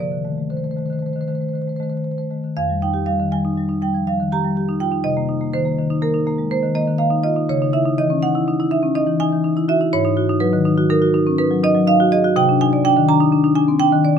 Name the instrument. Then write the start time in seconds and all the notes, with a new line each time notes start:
marimba
0.00 C3 D5
0.12 D#3
0.25 D#3 A3
0.38 A3
0.50 D#3 C5
0.57 C5
0.64 A3 C5
0.71 C5
0.77 D#3 A3 C5
0.86 C5
0.90 D#3 C5
0.99 A3 C5
1.06 C5
1.13 D#3 C5
1.21 C5
1.28 D#3 A3 C5
1.35 C5
1.40 A3 C5
1.49 C5
1.53 D#3 C5
1.62 C5
1.67 A3 C5
1.76 D#3 C5
1.80 A3 C5
1.90 D#3 C5
1.97 C5
2.04 C5
2.11 C5
2.18 A3 C5
2.30 D#3 A3
2.44 D#3
2.57 F2 F5
2.69 G3
2.82 D#4 G5
2.94 G4
3.06 G3 F5
3.20 D#3
3.32 G3 G#5
3.45 D#4
3.57 G3
3.69 D#4
3.82 G3 G5
3.94 F3
4.07 G3 F5
4.20 D#3
4.32 G4 A#5
4.45 G3
4.57 G4
4.69 D#4
4.80 F4 G5
4.92 D#4
5.04 C3 D#5
5.17 A#3
5.29 D#4
5.41 A#3
5.54 D#3 C5
5.65 A#3
5.78 D#3
5.90 D#4
6.02 A#3 A#4
6.14 D#4
6.27 A#3
6.38 G#3
6.51 A#3 C5
6.63 D#3
6.75 A#3 D#5
6.87 D#3
6.98 A#3 F5
7.10 D#4
7.24 F4 D#5
7.36 D#4
7.49 C#3 C#5
7.62 D#4
7.73 E4 E5
7.85 D#4
7.98 E3 D#5
8.10 C#4
8.23 D#4 F#5
8.35 E4
8.48 D#4
8.60 E4
8.71 D#4 E5
8.83 C#4
8.95 D#4 D#5
9.07 E3
9.20 D#4 G#5
9.32 E3
9.44 D#4
9.57 E4
9.68 F#4 E5
9.81 E4
9.93 G#2 C#5
10.05 D#4
10.17 F#4
10.29 D#4
10.40 F#3 B4
10.53 D#3
10.65 D#4
10.78 F#4
10.90 D#4 A#4
11.02 F#4
11.14 D#4
11.27 C#4
11.38 D#4 B4
11.51 F#3
11.64 D#4 D#5
11.74 F#3
11.87 D#4 F5
12.00 F#4
12.12 G#4 D#5
12.24 F#4
12.36 C3 G5
12.49 D4
12.61 D#4 G#5
12.73 D5
12.85 D4 G5
12.97 D#3
13.09 D4 A#5
13.20 D#4
13.32 D4
13.44 D#4
13.55 D4 G#5
13.68 C4
13.80 D4 G5
13.93 D#3
14.05 D5